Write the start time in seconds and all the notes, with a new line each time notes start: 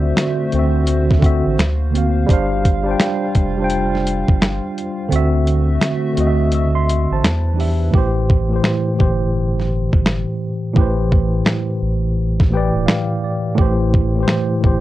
Already playing: D2 D3 A3 C4 F4 F#4 C5 D5 E5
0.17 finger snap, snare, closed hi-hat
0.52 D2 D3 C4, closed hi-hat
0.57 F#4 E5
0.87 closed hi-hat
1.11 kick, snare
1.19 D3 C4, kick
1.24 F#4 E5, closed hi-hat
1.47 A1
1.58 D2 A#3 F5, finger snap, snare, closed hi-hat
1.91 D3 A#3 C4
1.95 F#4 F5, closed hi-hat
2.26 G1 G3 D4 F4, kick, closed hi-hat
2.31 C5 F5
2.65 kick, closed hi-hat
2.84 G3 D4
2.88 C5 G5
3.00 finger snap, snare, closed hi-hat
3.35 F1, kick, closed hi-hat
3.57 G3 D4
3.62 C5 G5
3.70 closed hi-hat
3.95 snare
4.07 closed hi-hat
4.28 G1, kick
4.42 finger snap, snare, closed hi-hat
4.78 closed hi-hat
5.09 D2 D3 A3 C4 F#4 E5, closed hi-hat
5.13 F#4 E5
5.47 closed hi-hat
5.81 finger snap, snare, closed hi-hat
6.13 D3 C4, closed hi-hat
6.17 D2 F#4 D#5
6.27 E5
6.52 E6, closed hi-hat
6.75 E5 C6
6.89 closed hi-hat
7.11 A1 C5 A5
7.23 E2 G3 D4 E4 B4, finger snap, snare, closed hi-hat
7.54 E3 D4
7.58 G4 E5, open hi-hat
7.91 A1 A2 E3, kick
7.95 G4 C5
8.30 kick
8.49 A2 E3
8.53 G4 C5
8.64 finger snap, snare
8.94 A2 E3
8.99 G1 G4 C5, kick
9.60 snare
9.93 G1, kick
10.06 finger snap, snare
10.73 A1 A2 E3 G4, kick
10.78 B4 C5
11.12 kick
11.46 finger snap, snare
11.82 A1
12.40 kick, snare
12.50 A2 E3 G4 G5
12.55 B4 D5
12.75 E1
12.86 F5, finger snap, snare
13.24 D5
13.54 A1 A2 E3, kick
13.59 G4 C5
13.94 kick
14.16 A2 E3
14.20 G4 C5
14.28 finger snap, snare
14.60 A2 E3
14.64 G1 G4 C5, kick